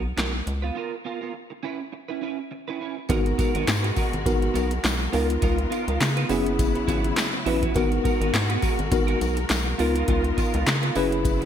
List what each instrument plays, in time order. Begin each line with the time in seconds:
Already playing: analog synth bass B1
0.04 muted clean electric guitar stroke
0.17 analog synth bass B1, clean electric guitar B3 F#4 A#4, snare, clap, closed hi-hat
0.34 muted clean electric guitar stroke
0.46 analog synth bass C#2, muted clean electric guitar stroke, closed hi-hat
0.62 clean electric guitar B3 F4 B4
0.75 clean electric guitar B3 F4 A#4
1.05 clean electric guitar B3 F4 A#4
1.21 clean electric guitar B3 F4 A#4
1.34 muted clean electric guitar stroke
1.50 muted clean electric guitar stroke
1.63 clean electric guitar C#4 E4 B4
1.79 muted clean electric guitar stroke
1.92 muted clean electric guitar stroke
2.08 clean electric guitar C#4 E4 B4
2.21 clean electric guitar C#4 E4 B4
2.38 muted clean electric guitar stroke
2.51 muted clean electric guitar stroke
2.68 clean electric guitar C#4 E4 B4
2.80 clean electric guitar C#4 E4 B4
2.97 muted clean electric guitar stroke
3.09 analog synth bass G#1, string section B2 G#3 F#4 A#4, clean electric guitar B3 F#4 A#4, tine electric piano B3 D#4 F#4 A#4, kick, closed hi-hat, tambourine
3.26 muted clean electric guitar stroke, closed hi-hat
3.38 clean electric guitar B3 F#4 A#4, kick, closed hi-hat, tambourine
3.54 analog synth bass G#1, clean electric guitar B3 F#4 A#4, closed hi-hat
3.68 analog synth bass G#2, snare, clap, closed hi-hat, tambourine
3.83 clean electric guitar B3 F#4 B4, closed hi-hat
3.96 clean electric guitar B3 F#4 A#4, kick, open hi-hat, tambourine
4.13 analog synth bass G#1, muted clean electric guitar stroke, closed hi-hat
4.26 analog synth bass G#1, tine electric piano B3 D#4 F#4 A#4, kick, closed hi-hat, tambourine
4.42 muted clean electric guitar stroke, closed hi-hat
4.54 analog synth bass B1, clean electric guitar B3 F#4 A#4, closed hi-hat, tambourine
4.70 muted clean electric guitar stroke, closed hi-hat
4.83 analog synth bass B1, muted clean electric guitar stroke, snare, clap, closed hi-hat, tambourine
5.00 muted clean electric guitar stroke
5.12 analog synth bass C#2, string section D#3 B3 F4, clean electric guitar B3 F4 A#4, tine electric piano B3 D#4 F4 A#4, open hi-hat, tambourine
5.29 muted clean electric guitar stroke, closed hi-hat
5.42 analog synth bass C#2, clean electric guitar B3 F4 A#4, kick, closed hi-hat, tambourine
5.58 muted clean electric guitar stroke, closed hi-hat
5.70 clean electric guitar B3 F4 A#4, closed hi-hat, tambourine
5.87 analog synth bass C#2, clean electric guitar B3 F4 A#4, closed hi-hat
6.00 analog synth bass C#3, muted clean electric guitar stroke, snare, clap, closed hi-hat, tambourine
6.17 clean electric guitar B3 F4 B4, closed hi-hat
6.29 analog synth bass F#1, string section C#3 F#3 E4, tine electric piano B3 C#4 E4 G#4, clean electric guitar E4 F#4 B4, open hi-hat, tambourine
6.46 muted clean electric guitar stroke, closed hi-hat
6.59 kick, closed hi-hat, tambourine
6.75 muted clean electric guitar stroke, closed hi-hat
6.88 analog synth bass G#1, clean electric guitar E4 F#4 B4, kick, closed hi-hat, tambourine
7.04 muted clean electric guitar stroke, closed hi-hat
7.17 muted clean electric guitar stroke, snare, clap, closed hi-hat, tambourine
7.34 muted clean electric guitar stroke
7.46 analog synth bass A1, tine electric piano B3 C#4 E4 B4, clean electric guitar E4 F#4 B4, open hi-hat
7.62 clean electric guitar E4 F#4 B4, kick, closed hi-hat
7.74 analog synth bass G#1, string section B2 G#3 F#4 A#4, clean electric guitar B3 F#4 A#4, tine electric piano B3 D#4 F#4 A#4, kick, closed hi-hat, tambourine
7.91 muted clean electric guitar stroke, closed hi-hat
8.04 clean electric guitar B3 F#4 A#4, kick, closed hi-hat, tambourine
8.20 analog synth bass G#1, clean electric guitar B3 F#4 A#4, closed hi-hat
8.33 analog synth bass G#2, muted clean electric guitar stroke, snare, clap, closed hi-hat, tambourine
8.49 clean electric guitar B3 F#4 B4, closed hi-hat
8.62 clean electric guitar B3 F#4 A#4, kick, open hi-hat, tambourine
8.78 analog synth bass G#1, muted clean electric guitar stroke, closed hi-hat
8.91 analog synth bass G#1, tine electric piano B3 D#4 F#4 A#4, muted clean electric guitar stroke, kick, closed hi-hat, tambourine
9.07 clean electric guitar B3 F#4 A#4, closed hi-hat
9.20 analog synth bass B1, muted clean electric guitar stroke, closed hi-hat, tambourine
9.36 muted clean electric guitar stroke, closed hi-hat
9.49 analog synth bass B1, muted clean electric guitar stroke, snare, clap, closed hi-hat, tambourine
9.66 muted clean electric guitar stroke
9.78 analog synth bass C#2, string section D#3 B3 F4, clean electric guitar B3 F4 A#4, tine electric piano B3 D#4 F4 A#4, open hi-hat, tambourine
9.95 clean electric guitar B3 F4 A#4, closed hi-hat
10.08 analog synth bass C#2, clean electric guitar B3 F4 A#4, kick, closed hi-hat
10.24 muted clean electric guitar stroke, closed hi-hat
10.37 clean electric guitar B3 F4 A#4, kick, closed hi-hat, tambourine
10.53 analog synth bass C#2, clean electric guitar B3 F4 A#4, closed hi-hat
10.67 analog synth bass C#3, snare, clap, closed hi-hat, tambourine
10.83 clean electric guitar B3 F4 B4, closed hi-hat
10.95 analog synth bass F#1, string section C#3 F#3 B3 E4, tine electric piano C#4 E4 G#4 B4, clean electric guitar E4 F#4 B4, open hi-hat, tambourine
11.12 muted clean electric guitar stroke, closed hi-hat
11.24 kick, closed hi-hat, tambourine
11.41 muted clean electric guitar stroke, closed hi-hat